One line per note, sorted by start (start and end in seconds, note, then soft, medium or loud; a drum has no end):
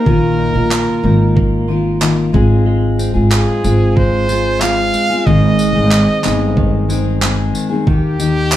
0.00 1.35 A#3 medium
0.00 0.38 D#4 medium
0.00 0.12 G4 medium
0.00 1.87 A#4 medium
0.06 0.51 A#1 loud
0.06 0.55 A#2 medium
0.06 2.40 D#3 medium
0.06 0.55 D#3 medium
0.06 0.55 A#3 medium
0.06 0.54 F4 medium
0.06 0.53 A#4 medium
0.06 kick loud
0.38 1.02 D#4 medium
0.54 0.85 A#1 medium
0.54 1.03 A#3 soft
0.54 1.04 F4 medium
0.54 1.03 A#4 medium
0.71 1.68 F4 medium
0.71 clap loud
0.71 clap medium
1.03 2.30 G#1 medium
1.03 1.66 D#3 medium
1.03 1.68 A#3 medium
1.03 2.00 D#4 medium
1.03 1.70 F4 medium
1.03 1.70 A#4 medium
1.36 2.33 A#3 medium
1.36 kick loud
1.68 1.99 D#3 medium
1.68 2.00 A#3 medium
1.68 3.31 F4 soft
1.68 2.01 F4 medium
1.68 2.03 A#4 medium
2.00 2.33 D#3 medium
2.00 2.33 A#3 medium
2.00 2.40 D#4 medium
2.00 2.33 F4 medium
2.00 2.35 A#4 medium
2.00 clap medium
2.00 clap loud
2.33 3.11 G#1 medium
2.33 3.63 G#3 medium
2.33 2.66 G#3 medium
2.33 3.16 C4 medium
2.33 3.14 F4 medium
2.33 3.13 G#4 medium
2.33 kick loud
2.66 3.95 G#3 medium
2.99 3.63 C4 medium
2.99 tambourine medium
3.14 3.45 G#1 medium
3.14 3.63 C4 soft
3.14 3.64 F4 medium
3.14 3.63 G#4 medium
3.31 4.28 F4 medium
3.31 3.98 G#4 medium
3.31 clap loud
3.31 clap medium
3.63 4.90 G#1 medium
3.63 4.27 G#3 medium
3.63 4.61 C4 medium
3.63 4.29 C4 medium
3.63 4.29 F4 medium
3.63 4.31 G#4 medium
3.63 tambourine medium
3.96 4.94 G#3 medium
3.96 4.62 C5 loud
3.96 kick loud
4.28 4.59 G#3 medium
4.28 4.61 C4 medium
4.28 5.33 F4 medium
4.28 4.61 F4 medium
4.28 4.63 G#4 medium
4.28 tambourine medium
4.60 5.10 G#3 medium
4.60 5.91 C4 medium
4.60 5.11 C4 medium
4.60 5.10 F4 medium
4.60 5.08 G#4 medium
4.60 5.27 F5 loud
4.60 clap loud
4.60 clap medium
4.94 5.59 G#3 medium
4.94 tambourine medium
5.09 5.26 C4 soft
5.09 5.27 F4 medium
5.09 5.26 G#4 medium
5.26 5.72 G#1 loud
5.26 5.75 G#2 medium
5.26 5.75 D#3 medium
5.26 6.57 D#3 medium
5.26 5.76 G#3 medium
5.26 5.76 C4 medium
5.26 5.75 D#4 medium
5.26 5.73 G#4 medium
5.26 7.22 D#5 loud
5.26 kick loud
5.59 6.23 G#3 medium
5.59 tambourine medium
5.74 6.05 G#1 medium
5.74 6.22 G#3 medium
5.74 6.23 C4 medium
5.74 6.24 D#4 medium
5.74 6.24 G#4 medium
5.91 6.88 C4 medium
5.91 clap loud
5.91 clap medium
6.23 7.51 G1 medium
6.23 6.87 G#3 medium
6.23 7.20 G#3 medium
6.23 6.89 C4 medium
6.23 6.91 D#4 medium
6.23 6.91 G#4 medium
6.23 clap medium
6.23 tambourine medium
6.57 7.54 D#3 medium
6.57 kick loud
6.89 7.20 G#3 medium
6.89 7.93 C4 medium
6.89 7.21 C4 medium
6.89 7.22 D#4 medium
6.89 7.23 G#4 medium
6.89 tambourine medium
7.21 7.71 G#3 medium
7.21 7.93 G#3 medium
7.21 7.71 C4 medium
7.21 7.70 D#4 medium
7.21 7.69 G#4 medium
7.21 clap loud
7.21 clap medium
7.54 7.87 D#3 medium
7.54 tambourine medium
7.70 7.86 G#3 medium
7.70 7.88 C4 medium
7.70 7.87 D#4 medium
7.70 7.87 G#4 medium
7.87 8.57 D#2 medium
7.87 8.17 D#3 medium
7.87 8.57 D#3 medium
7.87 8.19 A#3 medium
7.87 8.20 D#4 medium
7.87 8.57 G4 loud
7.87 8.21 G4 medium
7.87 kick loud
8.19 8.57 D#3 medium
8.19 8.57 A#3 medium
8.19 8.57 D#4 medium
8.19 8.57 G4 medium
8.19 tambourine medium
8.52 8.57 G4 medium
8.52 clap loud